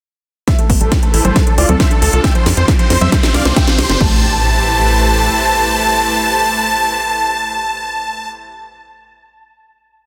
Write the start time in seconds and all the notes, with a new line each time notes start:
0.48 A3 E4 G4 B4 C5 E5, kick, snare, closed hi-hat, riser
0.59 A3 A4, closed hi-hat
0.70 A1 B3, kick, open hi-hat
0.81 A1 G3 A4, closed hi-hat
0.92 kick, snare, closed hi-hat
1.03 A3 A4, closed hi-hat
1.14 A1 E4 A4, open hi-hat
1.25 A1 A3 A4 C5, closed hi-hat, high conga
1.36 D4 F4 A4, kick, snare, closed hi-hat
1.47 D4 A4, closed hi-hat
1.58 D2 E4 F4 D5, open hi-hat
1.69 D2 C4 A4, closed hi-hat, high conga
1.80 C5 E5, kick, snare, closed hi-hat
1.91 D4 A4, closed hi-hat
2.02 D2 A4, open hi-hat
2.13 C2 D4 A4, closed hi-hat
2.24 C4 G4 E5 G5, kick, snare, closed hi-hat
2.35 F3 C5, closed hi-hat
2.46 F2 G3, snare, open hi-hat
2.57 F2 E3 C5, closed hi-hat
2.68 kick, snare, closed hi-hat
2.79 F3 C5, closed hi-hat
2.90 F2 C4 C5, snare, open hi-hat
3.01 F2 F3 C5 E5, closed hi-hat, high conga
3.12 D4 G4 C5, kick, snare, closed hi-hat
3.23 C4 C5, snare, closed hi-hat
3.34 C2 D4 D5 F5, snare, open hi-hat
3.45 C2 B3 C5, snare, closed hi-hat
3.56 E5 G5, kick, snare, closed hi-hat
3.67 C4 C5, snare, closed hi-hat
3.78 C2 G4 C5, snare, open hi-hat
3.89 G1 C4 C5, snare, closed hi-hat
4.00 A1 A3 E4 G4 B4 C5 A5, kick, crash, impact